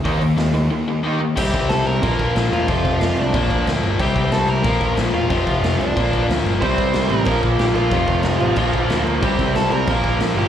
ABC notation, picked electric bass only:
X:1
M:4/4
L:1/8
Q:1/4=184
K:Bblyd
V:1 name="Picked electric bass" clef=bass
_E,, E,, E,, E,, z4 | C,, C,, C,, C,, B,,, B,,, B,,, E,,, | F,,, F,,, F,,, C,, B,,, B,,, D,, G,,, | C,, C,, C,, C,, B,,, B,,, B,,, E,,, |
F,,, F,,, F,,, C,, B,,, B,,, D,, G,,, | C,, C,, C,, A,,, B,,, B,,, B,,, B,,, | F,,, F,,, F,,, A,,, B,,, B,,, D,, D,, | C,, C,, C,, C,, B,,, B,,, B,,, G,,, |]